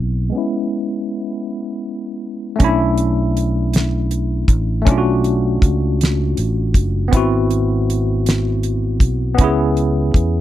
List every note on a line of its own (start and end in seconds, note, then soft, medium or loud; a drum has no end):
0.00 0.30 B1 medium
0.00 0.28 F#3 medium
0.00 0.29 B3 medium
0.00 0.30 C4 medium
0.00 0.32 E4 medium
0.30 2.54 G#3 medium
0.30 2.55 B3 medium
0.35 2.57 C#4 medium
0.35 2.58 E4 medium
2.56 4.80 A3 medium
2.56 4.82 C#4 medium
2.56 closed hi-hat medium
2.60 4.45 B1 loud
2.60 4.83 D4 medium
2.60 kick loud
2.64 4.85 E4 medium
2.98 closed hi-hat soft
3.37 closed hi-hat soft
3.73 snare loud
3.73 closed hi-hat medium
4.11 closed hi-hat medium
4.48 4.87 A1 medium
4.48 kick medium
4.48 closed hi-hat medium
4.82 7.07 A3 medium
4.82 7.08 C#4 medium
4.87 5.58 B1 loud
4.87 7.09 D4 medium
4.87 kick loud
4.87 closed hi-hat medium
4.91 4.95 F4 medium
4.98 7.15 F#4 medium
5.24 closed hi-hat soft
5.62 6.34 C#2 medium
5.62 kick medium
5.62 closed hi-hat soft
6.01 snare loud
6.01 closed hi-hat medium
6.37 6.72 A1 medium
6.37 closed hi-hat medium
6.74 7.09 F#1 medium
6.74 kick medium
6.74 closed hi-hat medium
7.08 9.33 B3 medium
7.08 9.35 C4 medium
7.13 9.01 G#1 loud
7.13 9.36 E4 medium
7.13 9.37 F#4 medium
7.13 kick loud
7.13 closed hi-hat medium
7.51 closed hi-hat soft
7.90 closed hi-hat soft
8.26 snare loud
8.26 closed hi-hat medium
8.63 closed hi-hat medium
9.00 9.35 B1 loud
9.00 kick medium
9.00 closed hi-hat medium
9.35 10.41 B3 medium
9.35 10.41 C#4 medium
9.35 closed hi-hat medium
9.39 10.11 C#2 loud
9.39 10.41 E4 medium
9.39 kick loud
9.44 10.41 G#4 medium
9.77 closed hi-hat soft
10.14 10.41 E2 medium
10.14 kick medium
10.14 closed hi-hat soft